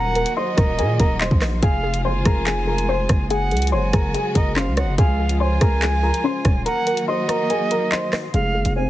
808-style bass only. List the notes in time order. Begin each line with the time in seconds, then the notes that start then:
Already playing: D#1
0.58 D#1
0.79 A#2
1.00 D#1
1.31 A#1
1.63 F1
2.05 F#1
2.26 F1
3.09 F#1
3.51 C#2
3.72 F#1
3.93 F#1
4.35 F#1
4.67 C#2
4.83 F#1
4.98 C#2
5.61 C#2
6.45 D#1
8.34 F1
8.55 F#1
8.65 F1